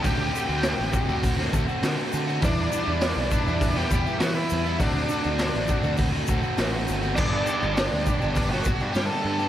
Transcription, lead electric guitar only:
X:1
M:4/4
L:1/16
Q:1/4=101
K:Dmix
V:1 name="Lead electric guitar"
G8 z8 | D6 D3 G3 F E3 | D8 z8 | D8 D F3 G A3 |]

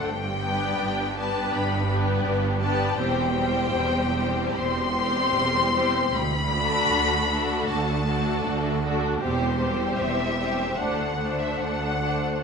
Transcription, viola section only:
X:1
M:4/4
L:1/8
Q:1/4=78
K:G
V:1 name="Viola section"
z [B,D]2 [B,D]2 [B,D]2 [B,D] | [G,C] [G,C]2 [G,C]2 [G,C]2 [G,C] | z [A,D]2 [A,D]2 [A,D]2 [A,D] | [G,C] [G,C]2 [G,C] [A,D] [A,D]2 [A,D] |]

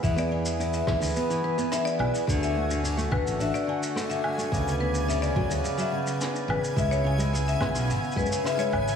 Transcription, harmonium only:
X:1
M:4/4
L:1/8
Q:1/4=107
K:Emix
V:1 name="Harmonium"
G8 | F8 | d8 | E8 |]
V:2 name="Harmonium" clef=bass
[E,B,]8 | [D,A,]8 | [C,B,]8- | [C,B,]8 |]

